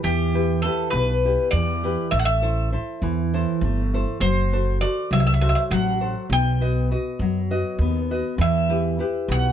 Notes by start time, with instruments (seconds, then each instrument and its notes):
0.03 upright bass E2, nylon-string guitar E3, bouzouki G4
0.34 nylon-string guitar E4 G4 B4
0.62 nylon-string guitar E4 G4 B4, bouzouki A4
0.90 upright bass B1, nylon-string guitar B2, bouzouki B4
1.25 nylon-string guitar E4 G4 B4
1.51 upright bass E2, bouzouki D5
1.55 nylon-string guitar E3
1.83 nylon-string guitar E4 G4 B4
2.11 upright bass A1, nylon-string guitar A3, bouzouki E5
2.19 bouzouki F#5
2.25 bouzouki E5
2.42 nylon-string guitar E4 A4 C5
2.73 nylon-string guitar E4 A4 C5
3.02 upright bass E2, nylon-string guitar E3
3.34 nylon-string guitar E4 A4 C5
3.61 upright bass G1, nylon-string guitar A3
3.94 nylon-string guitar E4 A4 C5
4.20 upright bass F#1, nylon-string guitar F#3, bouzouki C5
4.52 nylon-string guitar F#4 A4 C5
4.81 nylon-string guitar F#4 A4 C5, bouzouki D5
5.11 upright bass C2, nylon-string guitar F#3, bouzouki E5
5.20 bouzouki E5
5.27 bouzouki E5
5.34 bouzouki E5
5.41 nylon-string guitar F#4 A4 C5, bouzouki E5
5.49 bouzouki E5
5.55 bouzouki E5
5.71 upright bass A1, nylon-string guitar F#3, bouzouki F#5
6.00 nylon-string guitar F#4 A4 C5
6.30 upright bass B1, nylon-string guitar B3, bouzouki G5
6.61 nylon-string guitar F#4 B4 D#5
6.91 nylon-string guitar F#4 B4 D#5
7.19 upright bass F#2, nylon-string guitar F#3
7.51 nylon-string guitar F#4 B4 D#5
7.78 upright bass D#2, nylon-string guitar B3
8.11 nylon-string guitar F#4 B4 D#5
8.38 upright bass E2, nylon-string guitar E3, bouzouki E5
8.69 nylon-string guitar E4 G4 B4
8.99 nylon-string guitar E4 G4 B4
9.28 upright bass B1, nylon-string guitar B2, bouzouki F#5